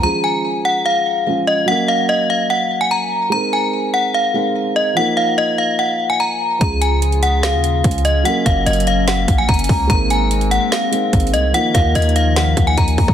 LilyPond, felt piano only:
\new Staff \with { instrumentName = "Felt piano" } { \time 4/4 \key des \major \tempo 4 = 146 <f aes des' aes'>2. <f aes des' aes'>4 | <ges bes des' bes'>1 | <aes c' ees' bes'>2~ <aes c' ees' bes'>8 <aes c' ees' bes'>4. | <f bes ees' bes'>1 |
<f aes des' aes'>2. <f aes des' aes'>4 | <ges bes des' bes'>1 | <aes c' ees' bes'>2~ <aes c' ees' bes'>8 <aes c' ees' bes'>4. | <f bes ees' bes'>1 | }